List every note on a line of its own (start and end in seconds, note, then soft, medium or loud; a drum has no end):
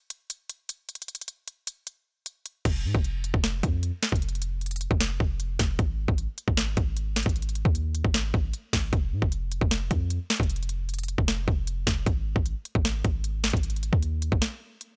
0.10 closed hi-hat medium
0.30 closed hi-hat medium
0.50 closed hi-hat medium
0.69 closed hi-hat medium
0.89 closed hi-hat medium
0.95 closed hi-hat medium
1.02 closed hi-hat medium
1.08 closed hi-hat medium
1.15 closed hi-hat medium
1.21 closed hi-hat medium
1.28 closed hi-hat medium
1.48 closed hi-hat medium
1.67 closed hi-hat medium
1.87 closed hi-hat medium
2.26 closed hi-hat medium
2.46 closed hi-hat medium
2.65 2.86 F1 loud
2.65 kick loud
2.65 closed hi-hat medium
2.65 crash loud
2.85 2.94 G#2 loud
2.95 3.32 F1 loud
2.95 kick loud
3.04 closed hi-hat medium
3.24 closed hi-hat medium
3.34 3.62 F1 loud
3.34 kick loud
3.44 snare loud
3.44 closed hi-hat medium
3.63 3.92 F2 loud
3.63 kick loud
3.63 closed hi-hat medium
3.83 closed hi-hat medium
4.03 snare medium
4.03 closed hi-hat medium
4.09 4.88 F1 loud
4.09 kick medium
4.09 closed hi-hat medium
4.16 closed hi-hat medium
4.22 closed hi-hat medium
4.29 closed hi-hat medium
4.35 closed hi-hat medium
4.42 closed hi-hat medium
4.61 closed hi-hat soft
4.66 closed hi-hat medium
4.71 closed hi-hat medium
4.76 closed hi-hat medium
4.81 closed hi-hat medium
4.91 5.19 F1 loud
4.91 kick loud
5.00 snare loud
5.00 closed hi-hat medium
5.20 5.58 F1 loud
5.20 kick medium
5.40 closed hi-hat medium
5.59 5.78 F1 loud
5.59 kick medium
5.59 snare medium
5.59 closed hi-hat medium
5.79 6.07 G#1 loud
5.79 kick loud
5.79 closed hi-hat medium
6.08 6.27 G#1 loud
6.08 kick loud
6.18 closed hi-hat medium
6.38 closed hi-hat medium
6.48 6.76 G#1 loud
6.48 kick loud
6.57 snare loud
6.57 closed hi-hat medium
6.77 7.24 G#1 loud
6.77 kick loud
6.77 closed hi-hat medium
6.97 closed hi-hat medium
7.16 snare loud
7.16 closed hi-hat medium
7.23 7.64 G#1 loud
7.23 kick medium
7.23 closed hi-hat medium
7.29 closed hi-hat medium
7.36 closed hi-hat medium
7.42 closed hi-hat medium
7.49 closed hi-hat medium
7.55 closed hi-hat medium
7.65 8.03 D#2 loud
7.65 kick loud
7.75 closed hi-hat medium
7.95 closed hi-hat medium
8.04 8.33 G#1 loud
8.04 kick loud
8.14 snare loud
8.14 closed hi-hat medium
8.34 8.53 G#1 loud
8.34 kick loud
8.54 closed hi-hat medium
8.73 8.92 G#1 loud
8.73 kick medium
8.73 snare medium
8.73 open hi-hat soft
8.93 9.14 F1 loud
8.93 kick loud
8.93 closed hi-hat medium
9.12 9.22 G#2 loud
9.22 9.60 F1 loud
9.22 kick loud
9.32 closed hi-hat medium
9.52 closed hi-hat medium
9.61 9.90 F1 loud
9.61 kick loud
9.71 snare loud
9.71 closed hi-hat medium
9.91 10.19 F2 loud
9.91 kick medium
9.91 closed hi-hat medium
10.10 closed hi-hat medium
10.30 snare medium
10.30 closed hi-hat medium
10.37 11.15 F1 loud
10.37 kick medium
10.37 closed hi-hat medium
10.43 closed hi-hat medium
10.50 closed hi-hat medium
10.56 closed hi-hat medium
10.63 closed hi-hat medium
10.69 closed hi-hat medium
10.89 closed hi-hat soft
10.94 closed hi-hat medium
10.99 closed hi-hat medium
11.04 closed hi-hat medium
11.08 closed hi-hat medium
11.18 11.46 F1 loud
11.18 kick loud
11.28 snare loud
11.28 closed hi-hat medium
11.48 11.85 F1 loud
11.48 kick medium
11.67 closed hi-hat medium
11.87 12.06 F1 loud
11.87 kick medium
11.87 snare loud
11.87 closed hi-hat medium
12.06 12.35 G#1 loud
12.06 kick loud
12.06 closed hi-hat medium
12.36 12.55 G#1 loud
12.36 kick loud
12.46 closed hi-hat medium
12.65 closed hi-hat medium
12.75 13.03 G#1 loud
12.75 kick loud
12.85 snare loud
12.85 closed hi-hat medium
13.05 13.52 G#1 loud
13.05 kick loud
13.05 closed hi-hat medium
13.24 closed hi-hat medium
13.44 snare medium
13.44 closed hi-hat medium
13.50 13.91 G#1 loud
13.50 kick medium
13.50 closed hi-hat medium
13.57 closed hi-hat medium
13.63 closed hi-hat medium
13.70 closed hi-hat medium
13.76 closed hi-hat medium
13.83 closed hi-hat medium
13.93 14.30 D#2 loud
13.93 kick loud
14.03 closed hi-hat medium
14.22 closed hi-hat medium
14.32 14.41 G#1 loud
14.32 kick loud
14.42 snare loud
14.42 closed hi-hat medium
14.81 closed hi-hat medium